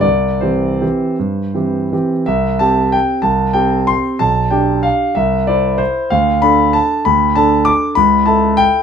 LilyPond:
\new Staff \with { instrumentName = "Grand piano" } { \time 3/4 \key c \major \tempo 4 = 188 << { d''4 c''2~ | c''2~ c''8 r8 | e''4 a''4 g''4 | a''4 g''4 c'''4 |
a''4 g''4 f''4 | e''4 d''4 c''4 | f''4 b''4 a''4 | b''4 a''4 d'''4 |
b''4 a''4 g''4 | } \\ { c,4 <e c' g'>4 <e c' g'>4 | g,4 <e c' g'>4 <e c' g'>4 | c,4 <c' g'>2 | c,4 <c' g'>2 |
b,,4 <d' g'>2 | c,4 <e' c''>2 | d,4 <d' a'>2 | d,4 <d' a'>2 |
cis,4 <e' a'>2 | } >> }